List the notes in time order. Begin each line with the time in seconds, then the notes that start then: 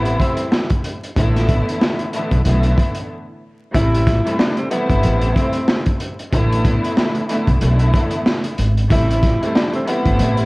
Already playing: A1 C3 E3 G3 A3 B3 E4
0.05 closed hi-hat
0.20 C4, kick, closed hi-hat
0.37 closed hi-hat
0.52 snare
0.70 kick, closed hi-hat
0.84 closed hi-hat
1.03 closed hi-hat
1.16 A1 A2 D3 E3 A3 B3 E4, kick, closed hi-hat
1.36 snare, closed hi-hat
1.49 kick, closed hi-hat
1.69 closed hi-hat
1.81 snare
1.99 closed hi-hat
2.13 A2 D3 E3 A3 B3 E4, closed hi-hat
2.31 B1, kick, closed hi-hat
2.43 B1 A2 D3 E3 A3 B3 E4, closed hi-hat
2.63 closed hi-hat
2.78 kick, closed hi-hat
2.95 closed hi-hat
3.73 A1 C3 E3 G3 A3 E4, kick, closed hi-hat
3.94 closed hi-hat
4.07 kick, snare, closed hi-hat
4.24 C3 E3 G3 A3 E4, closed hi-hat
4.39 D4, snare
4.57 C4, closed hi-hat
4.69 C3 E3 G3 A3 B3 E4, closed hi-hat
4.89 G1, kick, closed hi-hat
5.03 A1, closed hi-hat
5.21 closed hi-hat
5.36 C4, kick, closed hi-hat
5.53 closed hi-hat
5.68 snare
5.86 kick, closed hi-hat
6.00 closed hi-hat
6.19 closed hi-hat
6.32 A1 A2 D3 E3 A3 B3 E4, kick, closed hi-hat
6.52 closed hi-hat
6.65 kick, closed hi-hat
6.85 closed hi-hat
6.97 snare
7.15 closed hi-hat
7.29 A2 D3 E3 A3 B3 E4, closed hi-hat
7.47 B1, kick, closed hi-hat
7.59 B1 A2 D3 E3 A3 B3 E4, closed hi-hat
7.79 closed hi-hat
7.94 kick, closed hi-hat
8.11 closed hi-hat
8.26 snare
8.44 closed hi-hat
8.58 G#1, closed hi-hat
8.77 closed hi-hat
8.89 A1 C3 E3 G3 A3 E4, kick, closed hi-hat
9.11 closed hi-hat
9.23 kick, snare, closed hi-hat
9.41 C3 E3 G3 A3 E4, closed hi-hat
9.55 D4, snare
9.73 C4, closed hi-hat
9.85 C3 E3 G3 A3 B3 E4, closed hi-hat
10.06 G1, kick, closed hi-hat
10.19 A1, closed hi-hat
10.37 closed hi-hat